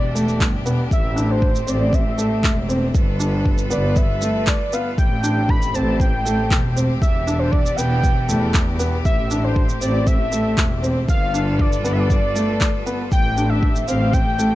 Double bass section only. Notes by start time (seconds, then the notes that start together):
Already playing: E1
0.40 G1
0.65 E1
0.91 A1
1.67 A1
2.44 E1
2.95 G1
3.71 G1
4.98 A1
5.74 A1
6.51 E1
7.02 E1
7.78 E1
8.29 E2
9.05 A1
9.81 A1
10.58 E1
11.08 G1
11.85 G1
13.12 A1
13.88 A1